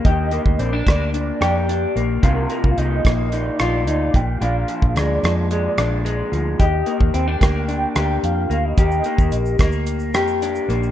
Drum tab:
HH |x-x-x-x-x-x-x-x-|x-x-x-x-x-x-x-x-|x-x-x-x-x-x-x-x-|x-x-x-x-x-x-x-x-|
SH |----------------|----------------|----------------|----------------|
SD |------r---r-----|------r---r-----|----r-r---r-----|------r---r-----|
BD |o--o--o---------|o--o--o-------o-|---o------------|o--o--o---------|

HH |x-x-x-x-x-x-x-x-|
SH |xxxxxxxxxxxxxxxx|
SD |------r---r-----|
BD |o--o--o---------|